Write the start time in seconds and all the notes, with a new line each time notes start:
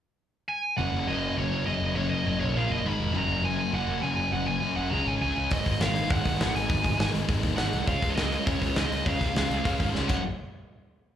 0.48 G#5
0.77 F#1 F#2 C#3 F#3 A#3 C#4 F#5
0.94 F#1
1.08 F#1 F#2 C#3 F#3 A#3 C#4 D#5
1.37 F#1 F#2 C#3 F#3 A#3 C#4 C#5
1.52 F#1
1.66 F#1 F#2 C#3 F#3 A#3 C#4 D#5
1.82 F#1
1.95 F#1 F#2 C#3 F#3 A#3 C#4 C#5
2.10 F#1 D#5
2.26 F#1 F#2 C#3 F#3 A#3 C#4
2.40 B1 C#5
2.56 A#1 A#2 F3 A#3 F4 F5
2.70 F#1 D#5
2.85 G#1 G#2 D#3 G#3 D#4 B5
3.00 F1
3.13 F#1 F#2 C#3 F#3 A#3 C#4 F#4 A#5
3.29 F#1
3.42 F#1 F#2 C#3 F#3 A#3 C#4 F#4 G#5
3.73 F#1 F#2 C#3 F#3 A#3 C#4 F#4 F#5
3.88 F#1
4.02 F#1 F#2 C#3 F#3 A#3 C#4 F#4 G#5
4.17 F#1
4.32 F#1 F#2 C#3 F#3 A#3 C#4 F#4 F#5
4.47 F#1 G#5
4.62 F#1 F#2 C#3 F#3 A#3 C#4 F#4
4.76 F#1 F#5
4.90 C#2 C#3 G#3 C#4 G#4 A#5
5.06 G#1 G#5
5.21 C#2 C#3 G#3 C#4 G#4 G#5
5.37 C#2
5.51 G#1 G#2 D#3 G#3 B3 D#4 G#4 D#5, kick, open hi-hat
5.66 G#1, kick, open hi-hat
5.81 G#1 G#2 D#3 G#3 B3 D#4 G#4 F5, snare, open hi-hat
5.95 open hi-hat
6.10 G#1 G#2 D#3 G#3 B3 D#4 G#4 F#5, kick, open hi-hat
6.25 G#1, kick, open hi-hat
6.39 G#1 G#2 D#3 G#3 B3 D#4 G#4, snare, open hi-hat
6.55 G#1 G#5, open hi-hat
6.69 G#1 G#2 D#3 G#3 B3 D#4 G#4, kick, open hi-hat
6.84 G#1, kick, open hi-hat
6.98 G#1 G#2 D#3 G#3 B3 D#4 G#4, snare, open hi-hat
7.13 G#1, open hi-hat
7.27 G#1 G#2 D#3 G#3 B3 D#4 G#4, kick, open hi-hat
7.43 D#2, kick, open hi-hat
7.57 G#1 G#2 D#3 G#3 B3 D#4 G#4 F#5, snare, open hi-hat
7.73 C2, open hi-hat
7.87 C#2 C#3 G#3 C#4 F4 G#4 F5, kick, open hi-hat
8.02 C#2, kick, open hi-hat
8.10 C#5
8.16 C#2 C#3 G#3 C#4 F4 G#4 D#5, snare, open hi-hat
8.32 open hi-hat
8.47 C#2 C#3 G#3 C#4 F4 G#4 C#5, kick, open hi-hat
8.62 C#2, kick, open hi-hat
8.76 C#2 C#3 G#3 C#4 F4 G#4 D#5, snare, open hi-hat
8.91 C#2, open hi-hat
9.06 C#2 C#3 G#3 C#4 F4 G#4 F5, kick, open hi-hat
9.21 C#2, kick, open hi-hat
9.35 C#2 C#3 G#3 C#4 F4 G#4, snare, open hi-hat
9.50 C#2, open hi-hat
9.65 C#2 C#3 G#3 C#4 F4 G#4, kick, open hi-hat
9.80 G#1, kick, open hi-hat
9.94 C#2 C#3 G#3 C#4 F4 G#4, snare
10.08 F#1 F#2 C#3 F#3 A#3 C#4 F#5, kick, crash